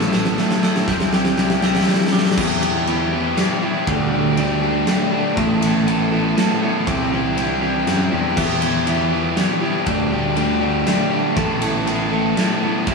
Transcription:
Already playing: A1 A2 A3 B3 E4 A4 E6
0.01 snare
0.13 A3 B3 E4 A4 E6, snare
0.25 snare
0.38 A3 B3 E4 A4, snare
0.51 snare
0.63 A3 B3 E4 A4 E6, snare
0.76 snare
0.88 C2 C3 G3 C4 E4 G4 G6, kick, snare
1.00 snare
1.12 C3 G3 C4 E4 G4, snare
1.25 snare
1.37 C3 G3 C4 D4 E4 G4 G6, snare
1.50 snare
1.62 C3 G3 C4 E4 G4 E6, snare
1.75 snare
1.81 snare
1.87 C3 G3 C4 E4 G4, snare
1.94 snare
2.00 snare
2.07 snare
2.13 C3 G3 C4 E4 G4 D6, snare
2.19 snare
2.25 snare
2.31 snare
2.37 E2 E3 B3 E4 G4, kick, crash
2.62 E3 B3 E4 G4, ride
2.87 E3 B3 E4 G4, ride
3.12 E3 B3 E4 G4
3.37 E3 G3 B3 E4 G4, snare, ride
3.62 E3 B3 E4 G4
3.87 D2 D3 G3 A3 D4 G4, kick, ride
4.12 D3 A3 D4 G4
4.37 G3 A3 D4 G4, ride
4.62 D3 G3 A3 D4 G4
4.87 G3 A3 D4 G4, snare, ride
5.12 D3 G3 A3 D4 G4
5.37 A1 A2 A3 B3 E4 A4, kick, ride
5.62 E3 B3 E4 A4, ride
5.86 A3 B3 E4 A4, ride
6.12 E3 A3 B3 E4 A4
6.37 A3 B3 E4 A4, snare, ride
6.62 A3 B3 E4 A4
6.86 C2 C3 G3 C4 E4 G4, kick, ride
7.12 E3 C4 E4 G4
7.36 G3 C4 D4 E4 G4, ride
7.62 C3 E3 G3 C4 E4 G4
7.87 F#2 G3 C4 E4 G4, snare, ride
8.11 E2 C3 G3 C4 D4 E4 G4
8.37 E2 E3 B3 E4 G4, kick, crash
8.62 E3 B3 E4 G4, ride
8.86 E3 B3 E4 G4, ride
9.11 E3 B3 E4 G4
9.37 E3 G3 B3 E4 G4, snare, ride
9.61 E3 B3 E4 G4
9.86 D2 D3 G3 A3 D4 G4, kick, ride
10.11 D3 A3 D4 G4
10.36 G3 A3 D4 G4, ride
10.61 D3 G3 A3 D4 G4
10.86 G3 A3 D4 G4, snare, ride
11.11 D3 G3 A3 D4 G4
11.36 A1 A2 A3 B3 E4 A4, kick, ride
11.61 E3 B3 E4 A4, ride
11.86 A3 B3 E4 A4, ride
12.11 E3 A3 B3 E4 A4
12.37 A3 B3 E4 A4, snare, ride
12.62 A3 B3 E4 A4
12.87 C2 C3 G3 C4 E4 G4, kick, ride

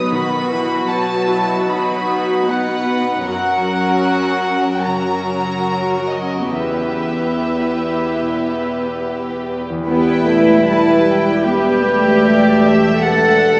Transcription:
Already playing: F#3 B3 B4 F#5 D#6
0.10 B2 D#3 F#4 B4 B5
0.37 F#3
0.50 E3
0.62 B4
0.89 F#3 F#4 B4 F#5 A5
1.16 B4
1.29 E4
1.42 B3
1.68 F#3 D#4 F#4 B4 B5
1.95 B3
2.09 D#4
2.22 B4
2.48 B3 D#4 F#4 B4 F#5
2.75 B4
3.01 B3
3.25 F#2 F#3 C#4 F#4 A#4 F#5
3.53 C#4
3.79 A#4
4.05 F#5
4.32 A#4
4.58 C#4
4.85 C#3 F#3 C#4 F#4 A#4 A#5
5.12 C#4
5.40 A#4
5.68 F#5
5.95 A#4
6.09 D#5
6.22 C#4
6.50 E2 B3 E4 G4 B4 E5
6.79 E4
7.08 B4
7.37 E5
7.66 B4
7.93 E4
8.20 B2
8.48 E4
8.76 B4
9.04 B5
9.32 B4
9.60 E4
9.70 E2
9.74 B3
9.78 G4
9.83 B3 E4 B4
9.87 E1 G3 B4 G5
10.27 A3
10.67 G3 B4 A5
11.08 G5
11.46 B3 G4 B4 E5
11.87 A3
12.25 D5
12.65 E5
13.03 G3 A4 B4 E5 F#5

